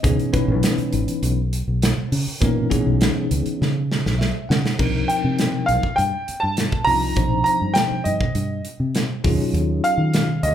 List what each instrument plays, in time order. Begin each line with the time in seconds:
0.03 fingered electric bass C#2, tine electric piano E3 B3 C#4 D#4 G#4, kick, closed hi-hat
0.19 closed hi-hat
0.33 tine electric piano E3 B3 C#4 D#4 B4, muted fingered electric bass stroke, kick, closed hi-hat
0.48 fingered electric bass B1
0.63 snare, closed hi-hat
0.78 muted fingered electric bass stroke, closed hi-hat
0.93 fingered electric bass G#1, closed hi-hat
1.08 muted fingered electric bass stroke, closed hi-hat
1.23 fingered electric bass B1, closed hi-hat
1.53 closed hi-hat
1.68 fingered electric bass B1
1.82 snare, closed hi-hat
1.98 muted fingered electric bass stroke
2.12 fingered electric bass C#3, open hi-hat
2.27 muted fingered electric bass stroke
2.41 fingered electric bass A#2, tine electric piano E3 B3 C#4 D#4 A#4, kick, closed hi-hat
2.70 tine electric piano E3 B3 C#4 D#4 G#4, kick, closed hi-hat
2.87 fingered electric bass B1
3.01 snare, closed hi-hat
3.17 muted fingered electric bass stroke
3.31 fingered electric bass C#2, closed hi-hat
3.46 muted fingered electric bass stroke, closed hi-hat
3.61 fingered electric bass C#3, snare
3.92 snare
4.06 fingered electric bass B1, snare
4.19 tine electric piano E5, snare
4.49 fingered electric bass C#3, tine electric piano F#5, snare
4.64 muted fingered electric bass stroke, snare
4.79 fingered electric bass C2, tine electric piano F3 C4 D4 D#4 A#4, kick, crash
5.08 grand piano G5, closed hi-hat
5.24 fingered electric bass C3
5.39 snare, closed hi-hat
5.66 fingered electric bass C2, grand piano F5, closed hi-hat
5.83 muted fingered electric bass stroke, kick
5.96 fingered electric bass G2, grand piano G5, closed hi-hat
6.28 muted fingered electric bass stroke, closed hi-hat
6.40 fingered electric bass G2, grand piano A5
6.57 snare, closed hi-hat
6.72 kick
6.85 fingered electric bass C2, tine electric piano F3 C4 D4 D#4 F4, grand piano A#5, open hi-hat
7.16 fingered electric bass A#1, tine electric piano F3 C4 D4 D#4 C5, kick, closed hi-hat
7.44 grand piano A#5, closed hi-hat
7.61 fingered electric bass G2
7.74 grand piano G5, snare, closed hi-hat
7.91 muted fingered electric bass stroke
8.04 fingered electric bass G2, grand piano D#5, closed hi-hat
8.21 kick
8.35 fingered electric bass G2, closed hi-hat
8.65 closed hi-hat
8.80 fingered electric bass C3
8.95 snare, closed hi-hat
9.24 fingered electric bass D#2, tine electric piano F#3 C#4 D#4 F4 G#4, kick, open hi-hat
9.53 fingered electric bass D#2, closed hi-hat
9.84 grand piano F5, closed hi-hat
9.98 fingered electric bass D#3
10.14 snare, closed hi-hat
10.43 fingered electric bass D#2, grand piano D#5, closed hi-hat